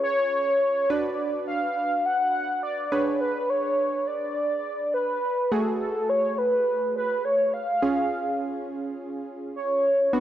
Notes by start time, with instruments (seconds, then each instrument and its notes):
Already playing: synth keys C#4 F4 G#4
0.04 soft synth lead C#5
0.90 synth keys D4 F#4 B4, soft synth lead D5
1.48 soft synth lead F5
2.06 soft synth lead F#5
2.63 soft synth lead D5
2.92 synth keys D4 G#4 B4, soft synth lead C#5
3.21 soft synth lead B4
3.50 soft synth lead C#5
4.07 soft synth lead D5
4.94 soft synth lead B4
5.52 synth keys A3 F#4 G#4, soft synth lead A4
5.81 soft synth lead A4
6.09 soft synth lead C#5
6.38 soft synth lead B4
6.96 soft synth lead B4
7.25 soft synth lead C#5
7.53 soft synth lead F5
7.82 synth keys C#4 F4 G#4
9.56 soft synth lead C#5
10.13 synth keys B3 D4 F#4, soft synth lead B4